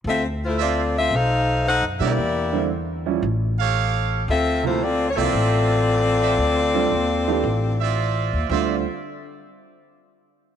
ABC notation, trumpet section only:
X:1
M:4/4
L:1/8
Q:"Swing" 1/4=114
K:Dm
V:1 name="Trumpet section"
z2 [Fcde] z4 [GBde] | z4 z [GA^cf]3 | z3 [Fcde]3 z [Fcde] | z4 z [Fcde]3 |
[Fcde] z6 z |]